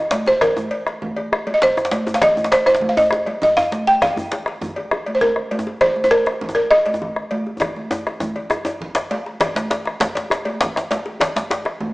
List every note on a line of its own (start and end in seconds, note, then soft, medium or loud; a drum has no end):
0.00 0.28 D#5 medium
0.11 cowbell medium
0.11 djembe slap medium
0.11 high conga medium
0.26 0.42 C5 medium
0.26 djembe slap medium
0.26 djembe tone medium
0.26 djembe tone soft
0.41 1.58 A#4 medium
0.41 bombo rim medium
0.41 bombo low loud
0.41 cowbell medium
0.41 djembe slap medium
0.41 djembe slap soft
0.41 low conga medium
0.41 djembe bass medium
0.57 bombo rim soft
0.57 djembe tone medium
0.57 high conga medium
0.71 cowbell medium
0.87 bombo rim medium
0.87 djembe slap medium
0.87 high conga soft
1.02 bombo low medium
1.02 high conga medium
1.02 low conga medium
1.16 bombo rim soft
1.16 cowbell soft
1.16 djembe tone medium
1.32 bombo rim loud
1.32 djembe bass medium
1.47 cowbell soft
1.47 djembe slap medium
1.47 high conga soft
1.54 1.61 D#5 medium
1.62 2.12 C5 medium
1.62 bombo rim soft
1.62 bombo low loud
1.62 djembe slap soft
1.62 djembe slap medium
1.62 high conga soft
1.62 djembe tone medium
1.62 low conga medium
1.77 bombo rim medium
1.77 djembe tone medium
1.85 djembe slap medium
1.91 cowbell soft
1.91 djembe slap medium
1.91 high conga medium
2.07 djembe slap soft
2.07 djembe tone soft
2.07 djembe tone medium
2.14 2.21 F5 medium
2.14 djembe slap medium
2.21 2.53 D#5 medium
2.21 bombo rim medium
2.21 bombo low loud
2.21 cowbell medium
2.21 djembe slap medium
2.21 low conga medium
2.21 djembe bass medium
2.37 bombo rim soft
2.37 high conga medium
2.37 djembe tone medium
2.44 djembe slap medium
2.51 2.66 C5 medium
2.51 bombo rim soft
2.51 cowbell soft
2.51 djembe slap loud
2.51 djembe slap soft
2.51 djembe tone medium
2.66 2.88 C5 medium
2.66 bombo rim medium
2.66 djembe slap soft
2.66 djembe tone medium
2.75 djembe slap medium
2.80 bombo low loud
2.80 high conga medium
2.80 low conga medium
2.89 2.96 F5 medium
2.97 3.25 D#5 medium
2.97 cowbell soft
2.97 djembe bass loud
3.11 bombo rim loud
3.11 djembe slap medium
3.11 djembe bass medium
3.26 cowbell soft
3.26 djembe slap soft
3.26 high conga medium
3.42 3.58 D#5 medium
3.42 bombo low loud
3.42 djembe tone medium
3.42 low conga medium
3.42 djembe bass medium
3.57 3.88 F5 loud
3.57 bombo rim medium
3.57 djembe bass medium
3.72 djembe slap medium
3.72 high conga medium
3.87 4.02 G5 medium
3.87 djembe slap medium
3.87 djembe tone medium
4.01 4.58 F5 medium
4.01 bombo rim medium
4.01 bombo low medium
4.01 cowbell medium
4.01 low conga medium
4.01 djembe bass medium
4.16 bombo rim soft
4.16 high conga medium
4.16 djembe bass loud
4.31 bombo rim soft
4.31 cowbell soft
4.31 djembe slap medium
4.31 djembe tone medium
4.46 bombo rim medium
4.46 djembe slap medium
4.61 bombo low loud
4.61 high conga medium
4.61 low conga medium
4.61 djembe bass medium
4.76 cowbell soft
4.76 djembe tone medium
4.91 bombo rim loud
4.91 djembe bass medium
5.06 cowbell soft
5.06 high conga medium
5.15 5.22 C5 medium
5.21 5.83 A#4 medium
5.21 bombo low loud
5.21 djembe tone medium
5.21 low conga medium
5.36 bombo rim medium
5.51 cowbell medium
5.51 high conga medium
5.59 djembe tone medium
5.67 djembe slap medium
5.67 djembe tone medium
5.81 6.03 C5 medium
5.81 bombo rim medium
5.81 bombo low medium
5.81 cowbell medium
5.81 djembe bass medium
5.81 low conga medium
5.96 bombo rim soft
5.96 high conga medium
6.04 6.11 C5 medium
6.04 djembe tone medium
6.11 6.53 A#4 medium
6.11 bombo rim soft
6.11 cowbell soft
6.11 djembe slap soft
6.11 djembe tone medium
6.26 bombo rim medium
6.26 djembe slap medium
6.41 bombo low medium
6.41 high conga medium
6.41 low conga medium
6.49 djembe tone medium
6.55 6.71 A#4 medium
6.55 cowbell soft
6.55 djembe tone medium
6.71 9.07 D#5 medium
6.71 bombo rim loud
6.71 djembe bass medium
6.86 cowbell soft
6.86 djembe slap medium
6.86 high conga soft
6.94 djembe tone medium
7.02 bombo low loud
7.02 djembe tone medium
7.02 low conga medium
7.16 bombo rim medium
7.31 cowbell soft
7.31 high conga medium
7.47 djembe tone medium
7.60 bombo rim medium
7.60 bombo low medium
7.60 cowbell medium
7.60 djembe tone medium
7.60 high conga soft
7.60 low conga medium
7.60 djembe bass medium
7.76 bombo rim soft
7.76 high conga soft
7.91 cowbell soft
7.91 djembe tone loud
7.91 djembe tone medium
8.07 bombo rim medium
8.07 djembe slap medium
8.20 bombo low medium
8.20 djembe tone loud
8.20 high conga medium
8.20 low conga medium
8.36 cowbell soft
8.36 djembe tone medium
8.50 bombo rim loud
8.50 djembe tone medium
8.50 djembe bass medium
8.65 bombo rim soft
8.65 cowbell soft
8.65 djembe slap soft
8.65 djembe tone medium
8.81 bombo low loud
8.81 djembe bass soft
8.81 low conga medium
8.95 bombo rim medium
8.95 djembe slap medium
8.95 djembe bass soft
9.11 bombo rim soft
9.11 cowbell soft
9.11 djembe slap medium
9.11 high conga medium
9.26 djembe slap medium
9.40 bombo rim loud
9.40 bombo low medium
9.40 cowbell medium
9.40 djembe slap medium
9.40 low conga medium
9.40 djembe bass medium
9.55 bombo rim soft
9.55 djembe slap medium
9.55 high conga medium
9.70 bombo rim soft
9.70 cowbell medium
9.70 djembe slap soft
9.70 djembe slap medium
9.70 djembe tone medium
9.85 bombo rim medium
9.85 djembe slap medium
10.00 bombo low medium
10.00 djembe slap loud
10.00 high conga medium
10.00 low conga medium
10.15 cowbell soft
10.15 djembe slap medium
10.15 djembe tone medium
10.30 bombo rim loud
10.30 djembe slap medium
10.30 djembe bass medium
10.45 cowbell medium
10.45 djembe slap medium
10.45 high conga medium
10.61 bombo low medium
10.61 djembe slap loud
10.61 djembe tone medium
10.61 low conga medium
10.76 bombo rim medium
10.76 djembe slap medium
10.91 cowbell medium
10.91 djembe slap medium
10.91 high conga medium
11.06 djembe slap medium
11.06 djembe tone medium
11.20 bombo rim medium
11.20 bombo low medium
11.20 cowbell medium
11.20 djembe slap loud
11.20 djembe bass medium
11.20 low conga medium
11.36 bombo rim soft
11.36 djembe slap medium
11.36 high conga medium
11.50 bombo rim soft
11.50 cowbell medium
11.50 djembe slap soft
11.50 djembe slap medium
11.50 djembe tone medium
11.65 bombo rim medium
11.65 djembe slap medium
11.80 bombo low medium
11.80 high conga medium
11.80 low conga medium